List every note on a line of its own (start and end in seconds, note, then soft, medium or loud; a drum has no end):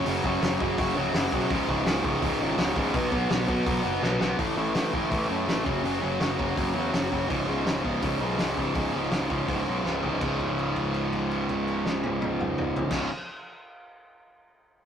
0.05 0.19 F#1 loud
0.05 0.23 F#2 loud
0.05 0.24 C#3 loud
0.05 0.24 F#3 loud
0.05 open hi-hat medium
0.24 0.36 F#1 loud
0.24 0.41 F#2 loud
0.24 0.41 C#3 loud
0.24 0.42 F#3 loud
0.24 kick medium
0.42 0.55 F#1 medium
0.42 0.59 F#2 medium
0.42 0.60 C#3 medium
0.42 0.60 F#3 loud
0.42 snare loud
0.42 open hi-hat medium
0.60 0.73 F#1 medium
0.60 0.77 F#2 loud
0.60 0.77 C#3 loud
0.60 0.78 F#3 loud
0.60 kick loud
0.78 0.91 F#1 medium
0.78 0.94 F#2 medium
0.78 0.95 C#3 medium
0.78 0.96 F#3 medium
0.78 kick loud
0.78 open hi-hat medium
0.96 1.09 C#1 medium
0.96 1.13 F#2 medium
0.96 1.14 C#3 loud
0.96 1.14 F#3 loud
1.14 1.27 F#1 loud
1.14 1.31 F#2 medium
1.14 1.32 C#3 medium
1.14 1.33 F#3 medium
1.14 snare loud
1.14 open hi-hat medium
1.32 1.45 B1 loud
1.32 1.49 F#2 loud
1.32 1.49 C#3 medium
1.32 1.50 F#3 loud
1.32 kick medium
1.50 1.63 C#1 loud
1.50 1.67 C#2 loud
1.50 1.68 G#2 loud
1.50 1.69 C#3 loud
1.50 kick loud
1.50 open hi-hat medium
1.68 1.81 C#1 medium
1.68 1.84 C#2 loud
1.68 1.85 G#2 loud
1.68 1.86 C#3 loud
1.68 kick medium
1.85 1.99 C#1 loud
1.85 2.03 C#2 medium
1.85 2.04 G#2 medium
1.85 2.04 C#3 loud
1.85 snare loud
1.85 open hi-hat medium
2.04 2.17 C#1 medium
2.04 2.21 C#2 medium
2.04 2.22 G#2 loud
2.04 2.23 C#3 medium
2.04 kick loud
2.22 2.35 C#1 loud
2.22 2.40 C#2 medium
2.22 2.41 G#2 loud
2.22 2.41 C#3 loud
2.22 kick loud
2.22 open hi-hat medium
2.41 2.53 G#1 medium
2.41 2.57 C#2 medium
2.41 2.57 G#2 loud
2.41 2.58 C#3 loud
2.58 2.71 C#1 medium
2.58 2.74 C#2 medium
2.58 2.75 G#2 loud
2.58 2.76 C#3 loud
2.58 snare loud
2.58 open hi-hat medium
2.76 2.94 A1 loud
2.76 2.93 C#2 medium
2.76 2.93 G#2 loud
2.76 2.94 C#3 loud
2.76 kick loud
2.94 3.07 B1 medium
2.94 3.10 B2 loud
2.94 3.11 F#3 loud
2.94 3.11 B3 loud
2.94 kick loud
2.94 open hi-hat medium
3.11 3.25 B1 loud
3.11 3.28 B2 medium
3.11 3.29 F#3 loud
3.11 3.30 B3 loud
3.11 kick medium
3.30 3.43 B1 loud
3.30 3.46 B2 medium
3.30 3.47 F#3 medium
3.30 3.48 B3 medium
3.30 snare loud
3.30 open hi-hat medium
3.47 3.61 B1 loud
3.47 3.65 B2 medium
3.47 3.66 F#3 loud
3.47 3.66 B3 loud
3.47 kick loud
3.66 3.79 B1 medium
3.66 3.82 B2 medium
3.66 3.83 F#3 medium
3.66 3.84 B3 loud
3.66 kick loud
3.66 open hi-hat medium
3.83 3.98 F#1 medium
3.83 4.00 B2 medium
3.83 4.01 F#3 medium
3.83 4.02 B3 medium
4.02 4.15 B1 medium
4.02 4.19 B2 medium
4.02 4.20 F#3 medium
4.02 4.20 B3 loud
4.02 snare medium
4.20 4.33 B1 medium
4.20 4.37 B2 medium
4.20 4.38 F#3 medium
4.20 4.38 B3 loud
4.20 snare loud
4.38 4.54 A1 medium
4.38 4.55 A2 loud
4.38 4.56 E3 loud
4.38 4.57 A3 loud
4.38 kick loud
4.38 open hi-hat medium
4.56 4.72 A1 medium
4.56 4.73 A2 loud
4.56 4.74 E3 loud
4.56 4.75 A3 loud
4.74 4.91 A1 medium
4.74 4.91 A2 medium
4.74 4.93 E3 medium
4.74 4.94 A3 medium
4.74 snare loud
4.74 open hi-hat medium
4.93 5.09 A1 medium
4.93 5.08 A2 medium
4.93 5.09 E3 medium
4.93 5.10 A3 medium
4.93 kick loud
5.10 5.27 A1 medium
5.10 5.27 A2 loud
5.10 5.28 E3 loud
5.10 5.28 A3 medium
5.10 kick loud
5.10 open hi-hat medium
5.28 5.45 F#2 medium
5.28 5.45 A2 medium
5.28 5.46 E3 medium
5.28 5.47 A3 loud
5.47 5.68 A1 medium
5.47 5.64 A2 medium
5.47 5.65 E3 medium
5.47 5.65 A3 loud
5.47 snare loud
5.47 open hi-hat medium
5.65 5.81 F#1 medium
5.65 5.82 F#2 medium
5.65 5.83 C#3 medium
5.65 5.84 F#3 loud
5.65 kick loud
5.83 5.99 F#1 loud
5.83 6.00 F#2 loud
5.83 6.01 C#3 loud
5.83 6.01 F#3 loud
5.83 open hi-hat medium
6.01 6.18 F#1 medium
6.01 6.18 F#2 medium
6.01 6.19 C#3 medium
6.01 6.20 F#3 medium
6.20 6.36 F#1 medium
6.20 6.36 F#2 medium
6.20 6.37 C#3 medium
6.20 6.37 F#3 medium
6.20 snare loud
6.20 open hi-hat medium
6.37 6.54 F#1 medium
6.37 6.55 F#2 medium
6.37 6.55 C#3 medium
6.37 6.56 F#3 medium
6.37 kick loud
6.56 6.73 F#1 medium
6.56 6.72 F#2 loud
6.56 6.73 C#3 loud
6.56 6.74 F#3 medium
6.56 kick loud
6.56 open hi-hat medium
6.74 6.90 E2 medium
6.74 6.91 F#2 medium
6.74 6.91 C#3 medium
6.74 6.92 F#3 medium
6.92 7.08 F#1 medium
6.92 7.09 F#2 medium
6.92 7.10 C#3 medium
6.92 7.10 F#3 medium
6.92 snare loud
6.92 open hi-hat medium
7.10 7.27 F#1 medium
7.10 7.28 F#2 medium
7.10 7.29 C#3 medium
7.10 7.29 F#3 medium
7.10 kick medium
7.28 7.45 C#1 medium
7.28 7.47 C#2 medium
7.28 7.47 G#2 loud
7.28 7.49 C#3 loud
7.28 kick loud
7.28 open hi-hat medium
7.48 7.64 C#1 medium
7.48 7.65 C#2 medium
7.48 7.65 G#2 medium
7.48 7.67 C#3 loud
7.66 7.82 C#1 loud
7.66 7.83 C#2 medium
7.66 7.83 G#2 medium
7.66 7.85 C#3 medium
7.66 snare loud
7.66 open hi-hat medium
7.83 8.00 C#1 medium
7.83 8.01 C#2 medium
7.83 8.01 G#2 medium
7.83 8.03 C#3 medium
7.83 kick medium
8.02 8.18 C#1 medium
8.02 8.20 C#2 loud
8.02 8.20 G#2 loud
8.02 8.22 C#3 loud
8.02 kick loud
8.02 open hi-hat medium
8.20 8.36 B1 medium
8.20 8.39 C#2 medium
8.20 8.38 G#2 medium
8.20 8.39 C#3 medium
8.39 8.54 C#1 medium
8.39 8.57 C#2 medium
8.39 8.57 G#2 medium
8.39 8.58 C#3 medium
8.39 snare loud
8.39 open hi-hat medium
8.57 8.72 C#1 medium
8.57 8.73 C#2 medium
8.57 8.74 G#2 medium
8.57 8.75 C#3 medium
8.57 kick medium
8.74 8.91 C#1 medium
8.74 8.92 C#2 loud
8.74 8.93 G#2 loud
8.74 8.93 C#3 loud
8.74 kick loud
8.74 open hi-hat medium
8.93 9.09 C#1 medium
8.93 9.09 C#2 medium
8.93 9.10 G#2 medium
8.93 9.10 C#3 loud
9.11 9.27 C#1 medium
9.11 9.28 C#2 medium
9.11 9.29 G#2 medium
9.11 9.29 C#3 medium
9.11 snare loud
9.11 open hi-hat medium
9.29 9.45 C#1 medium
9.29 9.45 C#2 medium
9.29 9.46 G#2 medium
9.29 9.47 C#3 medium
9.29 kick loud
9.46 9.63 C#1 medium
9.46 9.65 C#2 medium
9.46 9.65 G#2 medium
9.46 9.66 C#3 medium
9.46 kick loud
9.46 open hi-hat medium
9.66 9.82 B1 medium
9.66 9.83 C#2 medium
9.66 9.83 G#2 medium
9.66 9.84 C#3 medium
9.84 10.00 C#1 medium
9.84 10.00 C#2 medium
9.84 10.01 G#2 medium
9.84 10.02 C#3 medium
9.84 snare medium
10.01 10.19 C#1 medium
10.01 10.18 C#2 medium
10.01 10.20 G#2 medium
10.01 10.20 C#3 medium
10.01 floor tom medium
10.19 12.83 C#1 medium
10.19 12.89 C#2 medium
10.19 12.91 G#2 medium
10.19 kick loud
10.19 crash medium
10.23 12.93 C#3 loud
10.40 kick medium
10.40 crash soft
10.58 crash soft
10.76 kick medium
10.76 crash medium
10.94 crash soft
11.13 kick medium
11.13 crash soft
11.31 crash soft
11.49 kick medium
11.49 crash soft
11.67 crash soft
11.86 snare medium
12.04 high tom medium
12.22 high tom loud
12.40 mid tom medium
12.58 mid tom loud
12.76 floor tom loud
12.90 13.06 C#1 medium
12.90 13.07 C#2 medium
12.90 13.08 G#2 medium
12.90 kick loud
12.90 snare loud
12.90 crash loud
12.94 13.09 C#3 loud